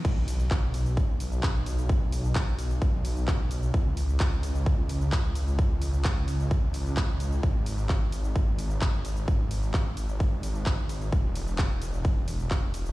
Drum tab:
CC |x---------------|----------------|----------------|----------------|
RD |x-x-x-x-x-x-x-x-|x-x-x-x-x-x-x-x-|x-x-x-x-x-x-x-x-|x-x-x-x-x-x-x-x-|
HH |--o---o---o---o-|--o---o---o---o-|--o---o---o---o-|--o---o---o---o-|
SH |x-xxx-xxx-xxx-xx|x-xxx-xxx-xxx-xx|x-xxx-xxx-xxx-xx|x-xxx-xxx-xxx-xx|
CP |----x-------x---|----x-------x---|----x-------x---|----x-------x---|
BD |o---o---o---o---|o---o---o---o---|o---o---o---o---|o---o---o---o---|

CC |----------------|----------------|----------------|
RD |x-x-x-x-x-x-x-x-|x-x-x-x-x-x-x-x-|x-x-x-x-x-x-x-x-|
HH |--o---o---o---o-|--o---o---o---o-|--o---o---o---o-|
SH |x-xxx-xxx-xxx-xx|x-xxx-xxx-xxx-xx|x-xxx-xxx-xxx-xx|
CP |----x-------x---|----x-------x---|----x-------x---|
BD |o---o---o---o---|o---o---o---o---|o---o---o---o---|